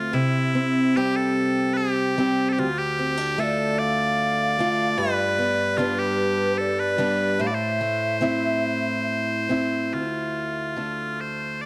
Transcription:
0.00 0.13 D2 medium
0.00 0.22 A3 soft
0.00 0.55 C4 soft
0.00 0.14 F4 medium
0.00 0.22 F4 soft
0.13 2.59 C3 medium
0.13 0.97 E4 medium
0.55 0.96 C4 medium
0.97 2.16 G3 medium
0.97 2.17 C4 medium
0.97 1.16 G4 medium
0.97 2.18 G4 medium
1.16 1.74 A4 medium
1.74 2.49 G4 medium
1.74 1.77 B4 medium
2.18 2.66 G3 medium
2.18 2.67 C4 medium
2.18 2.67 G4 medium
2.49 2.59 G4 medium
2.49 2.52 A4 medium
2.58 4.97 D2 medium
2.58 2.78 F4 medium
2.78 3.40 G4 loud
2.99 3.17 C4 medium
3.17 3.37 D4 medium
3.38 4.58 A3 medium
3.38 4.59 D4 medium
3.38 4.60 F4 medium
3.38 3.79 A4 loud
3.38 3.44 E5 medium
3.43 3.81 D5 medium
3.79 4.98 D5 loud
3.79 4.98 F5 loud
4.59 5.06 A3 medium
4.59 5.38 D4 medium
4.59 5.41 F4 medium
4.98 7.38 G2 medium
4.98 5.78 B4 loud
4.98 5.79 D5 loud
5.38 5.77 B3 medium
5.78 6.97 G3 medium
5.78 6.98 B3 medium
5.78 6.98 D4 medium
5.78 5.99 F4 medium
5.78 5.83 D5 medium
5.82 5.99 B4 medium
5.99 6.58 G4 medium
5.99 6.62 B4 medium
6.58 6.80 A4 medium
6.58 6.78 D5 medium
6.78 7.41 B4 medium
6.78 7.41 D5 medium
6.98 7.47 G3 medium
6.98 7.47 B3 medium
6.98 7.47 D4 medium
7.39 9.93 A2 medium
7.39 7.47 C5 medium
7.39 7.46 E5 medium
7.45 7.55 D5 medium
7.45 7.53 F5 medium
7.52 9.93 C5 medium
7.52 9.05 E5 medium
7.81 8.21 A3 medium
8.21 9.49 A3 medium
8.21 9.48 C4 medium
8.21 9.50 E4 medium
9.49 10.76 A3 medium
9.49 10.01 C4 medium
9.49 10.80 E4 medium
9.93 11.66 D2 medium
9.93 11.21 F4 medium
10.76 11.66 A3 soft
10.76 11.66 D4 soft
11.21 11.61 C5 medium
11.61 11.66 D5 medium

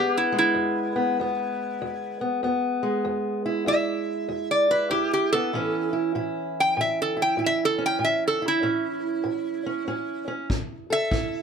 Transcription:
0.00 0.51 E2 medium
0.00 0.32 G#3 medium
0.00 0.95 B3 medium
0.00 0.15 G4 medium
0.00 3.20 G#4 medium
0.17 0.36 E4 medium
0.32 2.82 G#3 medium
0.39 2.20 E4 medium
0.55 1.13 E2 medium
0.96 1.21 B3 medium
1.20 1.77 E2 medium
1.20 2.20 B3 medium
1.82 2.39 E2 medium
2.21 2.43 B3 medium
2.43 3.00 E2 medium
2.43 3.45 B3 medium
2.83 5.31 G#3 medium
3.05 3.62 E2 medium
3.46 3.67 E4 medium
3.66 4.24 E2 medium
3.66 4.70 E4 medium
3.66 4.48 E5 loud
4.29 4.86 E2 medium
4.51 4.71 D5 medium
4.71 4.91 E4 medium
4.71 4.91 B4 medium
4.90 5.48 E2 medium
4.90 5.55 E4 medium
4.90 5.11 G4 loud
5.13 5.32 G4 medium
5.33 5.52 B3 medium
5.33 5.93 A4 loud
5.53 6.11 A2 medium
5.53 10.50 E3 medium
5.53 7.78 C#4 medium
5.53 5.92 E4 medium
5.93 6.15 E4 medium
6.15 6.73 A2 medium
6.15 7.16 E4 medium
6.60 6.79 G5 medium
6.77 7.35 A2 medium
6.77 6.99 E5 medium
7.02 7.20 A4 medium
7.17 7.38 E4 medium
7.22 7.41 G5 medium
7.37 7.96 A2 medium
7.37 8.42 E4 medium
7.46 7.63 E5 loud
7.65 7.83 A4 medium
7.78 8.63 C#4 medium
7.86 8.04 G5 loud
7.99 8.58 A2 medium
8.04 8.23 E5 medium
8.28 8.45 A4 medium
8.42 11.11 E4 medium
8.48 10.27 E4 medium
8.62 9.21 A2 medium
8.62 9.65 C#4 medium
9.24 9.82 A2 medium
9.66 9.86 C#4 medium
9.88 10.45 A2 medium
9.88 10.26 C#4 medium
10.28 10.47 C#4 medium
10.50 11.08 A2 medium
10.50 kick medium
10.90 11.42 A4 medium
10.90 11.42 E5 loud
11.11 11.42 A2 medium
11.11 11.42 E4 medium
11.11 kick medium

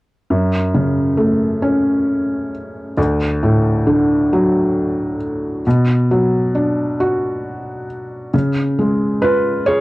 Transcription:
0.30 2.94 F#2 soft
0.74 2.49 C#3 soft
1.17 2.93 A3 soft
1.62 2.93 C#4 soft
2.97 5.61 D2 soft
3.43 5.17 A2 soft
3.87 5.61 D3 soft
4.33 5.62 F#3 soft
5.67 8.30 B2 soft
6.11 7.85 F#3 soft
6.55 8.29 D4 soft
7.00 8.30 F#4 soft
8.34 9.81 C#3 soft
8.79 9.81 G#3 soft
9.22 9.81 F4 soft
9.22 9.64 B4 medium
9.66 9.81 G#4 soft
9.66 9.81 C#5 medium

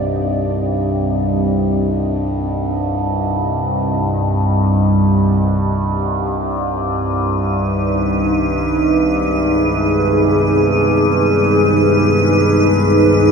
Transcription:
0.00 13.32 C2 medium
0.00 13.32 G2 medium
0.00 6.28 C4 medium
0.00 6.28 G4 medium
0.00 8.28 D5 medium
0.00 8.25 D#5 medium
6.29 13.32 B4 medium
7.49 13.32 D#4 medium
9.13 13.32 G#4 medium
9.92 13.32 B4 medium

